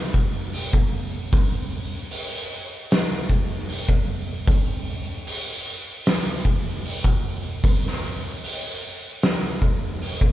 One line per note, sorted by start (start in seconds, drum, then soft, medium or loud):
0.14 kick medium
0.53 open hi-hat medium
0.73 kick medium
1.33 kick loud
1.33 open hi-hat medium
2.11 open hi-hat medium
2.91 snare loud
2.91 open hi-hat medium
3.30 kick medium
3.69 open hi-hat medium
3.89 kick medium
4.47 kick loud
4.47 open hi-hat medium
5.27 open hi-hat medium
6.06 snare loud
6.06 open hi-hat medium
6.45 kick medium
6.86 open hi-hat medium
7.04 kick medium
7.64 kick loud
7.64 open hi-hat medium
7.87 snare soft
8.44 open hi-hat medium
9.22 snare loud
9.22 open hi-hat medium
9.62 kick medium
10.02 open hi-hat medium
10.21 kick medium